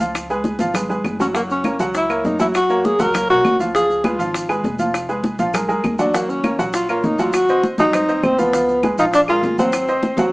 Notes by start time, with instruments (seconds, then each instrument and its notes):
Already playing: upright bass C#2
0.00 grand piano F3 F4 F5, high conga, maracas
0.15 high bongo, high conga, claves, maracas
0.29 grand piano G#3 G#4 B4, high bongo, high conga, maracas
0.44 high bongo, high conga, maracas
0.59 upright bass G#1, grand piano F3 F4 F5, high bongo, high conga, maracas
0.74 grand piano G#3 G#4 B4, high bongo, high conga, low conga, claves, maracas
0.89 grand piano G#3 G#4 B4, high bongo, high conga, low conga, maracas
1.04 upright bass F#1, high bongo, low bongo, high conga, claves, maracas
1.19 grand piano F#3 F#4 F#5, tenor saxophone C#4, high conga, maracas
1.34 grand piano F#3 F#4 F#5, tenor saxophone A#3, high bongo, high conga, maracas
1.49 tenor saxophone C#4, high bongo, high conga, maracas
1.64 grand piano A#3 A#4 C#5, high bongo, high conga, claves, maracas
1.79 upright bass C#2, grand piano F#3 F#4 F#5, high bongo, high conga, maracas
1.94 tenor saxophone E4, high bongo, high conga, maracas
2.09 grand piano A#3 A#4 C#5, high bongo, high conga, claves, maracas
2.24 upright bass F#2, tenor saxophone D#4, high bongo, low bongo, high conga, maracas
2.39 grand piano F#3 F#4 F#5, tenor saxophone E4, high conga, maracas
2.55 tenor saxophone F#4, high bongo, high conga, claves, maracas
2.70 grand piano A#3 A#4 C#5, high bongo, high conga, maracas
2.84 tenor saxophone G#4, high bongo, high conga, maracas
2.99 upright bass C#2, grand piano F#3 F#4 F#5, tenor saxophone A#4, high bongo, high conga, maracas
3.14 grand piano A#3 A#4 C#5, high bongo, high conga, low conga, claves, maracas
3.29 upright bass B1, grand piano A#3 A#4 C#5, tenor saxophone F#4, high bongo, high conga, maracas
3.44 upright bass C#2, high bongo, low bongo, high conga, claves, maracas
3.59 grand piano F3 F4 F5, high conga, maracas
3.74 grand piano F3 F4 F5, tenor saxophone G#4, high bongo, high conga, maracas
3.89 high bongo, high conga, maracas
4.04 grand piano G#3 G#4 B4, tenor saxophone F4, high bongo, high conga, claves, maracas
4.19 upright bass G#1, grand piano F3 F4 F5, high bongo, high conga, maracas
4.34 high bongo, high conga, maracas
4.49 grand piano G#3 G#4 B4, high bongo, high conga, claves, maracas
4.63 upright bass F1, high bongo, low bongo, high conga, maracas
4.79 grand piano F3 F4 F5, high conga, maracas
4.94 high bongo, claves, maracas
5.09 grand piano G#3 G#4 B4, high bongo, high conga, maracas
5.24 high bongo, high conga, maracas
5.39 upright bass A#1, grand piano F3 F4 F5, high bongo, high conga, maracas
5.54 grand piano G#3 G#4 A#4, high bongo, high conga, low conga, claves, maracas
5.68 upright bass D2, grand piano G#3 G#4 A#4, high bongo, high conga, low conga, maracas
5.83 upright bass D#2, high bongo, low bongo, high conga, claves, maracas
5.99 grand piano F#3 F#4 F#5, tenor saxophone D4, high conga, maracas
6.14 grand piano F#3 F#4 F#5, tenor saxophone A#3, high bongo, high conga, maracas
6.29 tenor saxophone C#4, high bongo, high conga, maracas
6.44 grand piano A#3 A#4 C#5, high bongo, high conga, claves, maracas
6.58 upright bass A#1, grand piano F#3 F#4 F#5, high bongo, high conga, maracas
6.73 tenor saxophone F4, high bongo, high conga, maracas
6.89 grand piano A#3 A#4 C#5, tenor saxophone F4, high bongo, high conga, claves, maracas
7.04 upright bass G#1, tenor saxophone D#4, high bongo, low bongo, high conga, maracas
7.19 grand piano F#3 F#4 F#5, tenor saxophone F4, high conga, maracas
7.33 tenor saxophone F#4, high bongo, claves, maracas
7.49 grand piano C4 C5 D#5, high bongo, high conga, maracas
7.63 high bongo, high conga, maracas
7.78 upright bass G#2, grand piano F#3 F#4 F#5, tenor saxophone D#4, high bongo, high conga, maracas
7.93 grand piano C4 C5 D#5, high bongo, high conga, low conga, claves, maracas
8.08 upright bass D#2, grand piano C4 C5 D#5, high bongo, maracas
8.23 upright bass C#2, tenor saxophone C4, high bongo, low bongo, high conga, claves, maracas
8.38 grand piano F3 F4 F5, tenor saxophone B3, high conga, maracas
8.53 grand piano F3 F4 F5, high bongo, high conga, maracas
8.68 high bongo, high conga, maracas
8.83 grand piano G#3 G#4 B4, high bongo, high conga, claves, maracas
8.98 upright bass A#1, grand piano F3 F4 F5, tenor saxophone D#4, high bongo, high conga, maracas
9.13 tenor saxophone D4, high bongo, high conga, maracas
9.28 grand piano G#3 G#4 A#4, tenor saxophone F4, high bongo, high conga, claves, maracas
9.42 upright bass G#1, high bongo, low bongo, high conga, maracas
9.58 grand piano F#3 F#4 F#5, tenor saxophone C4, high conga, maracas
9.73 high bongo, claves, maracas
9.88 grand piano C4 C5 D#5, high bongo, high conga, maracas
10.03 high bongo, high conga, maracas
10.17 upright bass D#2, grand piano F#3 F#4 F#5, high bongo, high conga, maracas